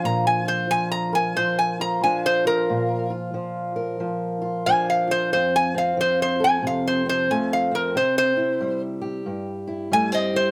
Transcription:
Already playing: steel-string acoustic guitar F3 D4 F4
0.04 steel-string acoustic guitar A#2, resonator guitar played with a steel bar A#5
0.27 resonator guitar played with a steel bar G#5
0.45 steel-string acoustic guitar F4, resonator guitar played with a steel bar C5
0.70 steel-string acoustic guitar F3, resonator guitar played with a steel bar G#5
0.92 resonator guitar played with a steel bar A#5
1.13 steel-string acoustic guitar A#4, resonator guitar played with a steel bar G#5
1.37 steel-string acoustic guitar F3, resonator guitar played with a steel bar C5
1.59 resonator guitar played with a steel bar G#5
1.80 steel-string acoustic guitar F4, resonator guitar played with a steel bar A#5
2.04 steel-string acoustic guitar F3 D4, resonator guitar played with a steel bar G#5
2.26 resonator guitar played with a steel bar C5
2.45 steel-string acoustic guitar F4, resonator guitar played with a steel bar A#4
2.70 steel-string acoustic guitar A#2
3.10 steel-string acoustic guitar F4
3.34 steel-string acoustic guitar F3
3.76 steel-string acoustic guitar A#4
4.00 steel-string acoustic guitar F3
4.42 steel-string acoustic guitar F4
4.66 steel-string acoustic guitar F3 D4, resonator guitar played with a steel bar G#5
4.90 resonator guitar played with a steel bar F5
5.08 steel-string acoustic guitar F4, resonator guitar played with a steel bar C5
5.32 steel-string acoustic guitar F2, resonator guitar played with a steel bar C5
5.56 resonator guitar played with a steel bar G#5
5.74 steel-string acoustic guitar C4, resonator guitar played with a steel bar F5
5.97 steel-string acoustic guitar F3, resonator guitar played with a steel bar C5
6.22 resonator guitar played with a steel bar C5
6.40 steel-string acoustic guitar A4
6.44 resonator guitar played with a steel bar G#5
6.63 steel-string acoustic guitar C3
6.67 resonator guitar played with a steel bar F5
6.87 resonator guitar played with a steel bar C5
7.06 steel-string acoustic guitar C4, resonator guitar played with a steel bar C5
7.30 steel-string acoustic guitar F3 A3, resonator guitar played with a steel bar G#5
7.53 resonator guitar played with a steel bar F5
7.71 steel-string acoustic guitar C4, resonator guitar played with a steel bar A#4
7.95 steel-string acoustic guitar C3, resonator guitar played with a steel bar C5
8.18 resonator guitar played with a steel bar C5
8.37 steel-string acoustic guitar E4
8.61 steel-string acoustic guitar G3
9.01 steel-string acoustic guitar G4
9.26 steel-string acoustic guitar G2
9.67 steel-string acoustic guitar E4
9.92 steel-string acoustic guitar G3 A3, resonator guitar played with a steel bar G#5
10.12 steel-string acoustic guitar C4, resonator guitar played with a steel bar D#5
10.33 steel-string acoustic guitar E4, resonator guitar played with a steel bar C5

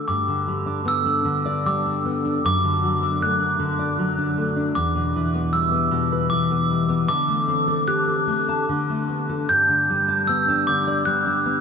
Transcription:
0.08 nylon-string guitar G2, glockenspiel D6
0.28 nylon-string guitar D3
0.48 nylon-string guitar G3
0.66 nylon-string guitar D4
0.85 nylon-string guitar B3, glockenspiel E6
1.05 nylon-string guitar D4
1.25 nylon-string guitar D3
1.45 nylon-string guitar D5
1.66 nylon-string guitar G3, glockenspiel D6
1.86 nylon-string guitar D4
2.05 nylon-string guitar B3
2.24 nylon-string guitar D4
2.44 nylon-string guitar F#2, glockenspiel D6
2.64 nylon-string guitar D3
2.84 nylon-string guitar F#3
3.02 nylon-string guitar D4
3.22 nylon-string guitar A3, glockenspiel F#6
3.39 nylon-string guitar D4
3.59 nylon-string guitar D3
3.79 nylon-string guitar D5
3.99 nylon-string guitar F#3
4.18 nylon-string guitar D4
4.38 nylon-string guitar A3
4.56 nylon-string guitar D4
4.75 nylon-string guitar E2, glockenspiel D6
4.95 nylon-string guitar B2
5.16 nylon-string guitar E3
5.34 nylon-string guitar B3
5.53 nylon-string guitar G3, glockenspiel E6
5.71 nylon-string guitar B3
5.91 nylon-string guitar B2
6.12 nylon-string guitar B4
6.30 nylon-string guitar E3, glockenspiel D6
6.51 nylon-string guitar B3
6.70 nylon-string guitar G3
6.89 nylon-string guitar B3
7.08 nylon-string guitar D3, glockenspiel D6
7.28 nylon-string guitar A3
7.48 nylon-string guitar C4
7.68 nylon-string guitar A4
7.87 nylon-string guitar G4, glockenspiel F#6
8.07 nylon-string guitar A4
8.27 nylon-string guitar A3
8.48 nylon-string guitar A5
8.69 nylon-string guitar D3
8.89 nylon-string guitar A3
9.09 nylon-string guitar B3
9.29 nylon-string guitar A4
9.49 nylon-string guitar G2, glockenspiel G6
9.69 nylon-string guitar D3
9.90 nylon-string guitar G3
10.08 nylon-string guitar D4
10.27 nylon-string guitar B3, glockenspiel E6
10.48 nylon-string guitar D4
10.67 nylon-string guitar D3, glockenspiel D6
10.87 nylon-string guitar D5
11.05 nylon-string guitar G3, glockenspiel F#6
11.26 nylon-string guitar D4
11.46 nylon-string guitar B3

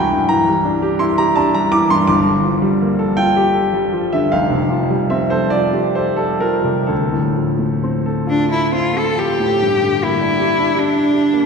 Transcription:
Already playing: grand piano C2 G5
0.13 grand piano G2
0.29 grand piano E3 A#5
0.48 grand piano G3
0.65 grand piano D4
0.82 grand piano G4
0.99 grand piano E4 C6
1.18 grand piano G4 A#5
1.36 grand piano D4 A5
1.54 grand piano G3 A#5
1.72 grand piano E3 D6
1.90 grand piano G2 C6
2.07 grand piano G1 G2 D6
2.26 grand piano D3
2.43 grand piano F3
2.62 grand piano G3
2.81 grand piano A#3
2.99 grand piano A4
3.17 grand piano F4 G5
3.37 grand piano G4
3.55 grand piano A4
3.74 grand piano G3
3.92 grand piano F3
4.13 grand piano D3 E5
4.32 grand piano F1 F2 F5
4.51 grand piano C3
4.70 grand piano F3
4.90 grand piano G3
5.10 grand piano C4 E5
5.30 grand piano A4 C5
5.50 grand piano F4 D5
5.73 grand piano G4
5.95 grand piano A4 C5
6.17 grand piano G3 A4
6.40 grand piano F3 A#4
6.64 grand piano C3
6.87 grand piano D2 A4
7.12 grand piano A2
7.35 grand piano F3
7.59 grand piano A3
7.83 grand piano C4
8.06 grand piano A4
8.27 cello D4, grand piano F4
8.50 cello E4, grand piano A4
8.72 grand piano C4, cello F4
8.93 grand piano A3
8.98 cello A4
9.15 grand piano F3, cello G4
9.40 grand piano A2
9.62 grand piano G2
9.82 grand piano D3
10.03 grand piano A#3, cello E4
10.21 grand piano D4
10.40 grand piano G4
10.59 grand piano D4
10.75 cello D4, grand piano G4
10.96 grand piano D4
11.13 grand piano G4
11.33 grand piano A#3

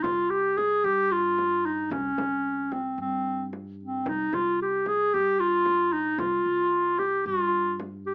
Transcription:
0.03 upright bass C2, clarinet F4, frame drum
0.30 clarinet G4
0.57 clarinet G#4, frame drum
0.84 upright bass G2, clarinet G4
1.12 clarinet F4
1.38 frame drum
1.66 clarinet D#4
1.90 upright bass C2, clarinet C#4, frame drum
2.17 upright bass C2, frame drum
2.72 clarinet C4, frame drum
2.98 upright bass G2, clarinet C4
3.53 frame drum
3.83 clarinet C4
4.05 upright bass C2, clarinet D#4, frame drum
4.33 upright bass C2, clarinet F4, frame drum
4.62 clarinet G4
4.86 clarinet G#4, frame drum
5.14 upright bass G2, clarinet G4
5.40 clarinet F4
5.66 frame drum
5.93 clarinet D#4
6.18 upright bass C2, clarinet F4, frame drum
6.46 upright bass C2
6.98 clarinet G4, frame drum
7.26 upright bass G2, clarinet F4
7.80 frame drum
8.06 clarinet G4

